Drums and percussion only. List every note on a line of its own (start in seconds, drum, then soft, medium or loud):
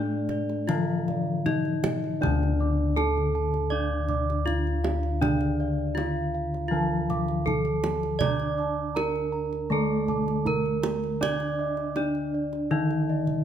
0.29 kendang slap soft
0.29 kendang low medium
0.50 kendang slap soft
0.69 kendang low medium
1.08 kendang slap soft
1.08 kendang low soft
1.46 kendang slap soft
1.46 kendang high soft
1.46 kendang low medium
1.65 kendang slap soft
1.84 kendang slap soft
1.84 kendang high medium
1.84 kendang low medium
2.04 kendang slap soft
2.23 kendang high soft
2.23 kendang low medium
2.43 kendang slap soft
2.97 kendang high soft
3.17 kendang slap soft
3.54 kendang slap soft
4.09 kendang low soft
4.30 kendang slap soft
4.48 kendang low medium
4.67 kendang slap soft
4.84 kendang high medium
5.03 kendang slap soft
5.22 kendang high medium
5.22 kendang low medium
5.41 kendang slap soft
5.97 kendang high medium
6.54 kendang slap soft
7.10 kendang low medium
7.28 kendang slap soft
7.47 kendang low medium
7.65 kendang slap soft
7.84 kendang high medium
8.03 kendang slap soft
8.21 kendang high medium
8.21 kendang low loud
8.40 kendang slap soft
8.97 kendang high medium
9.16 kendang slap soft
9.53 kendang slap soft
10.08 kendang low soft
10.28 kendang slap soft
10.46 kendang low medium
10.66 kendang slap soft
10.83 kendang high medium
11.04 kendang slap soft
11.23 kendang high soft
11.23 kendang low medium
11.40 kendang slap soft
11.77 kendang slap soft
11.96 kendang high medium
12.15 kendang slap soft
12.53 kendang slap soft
12.91 kendang slap soft
13.27 kendang low soft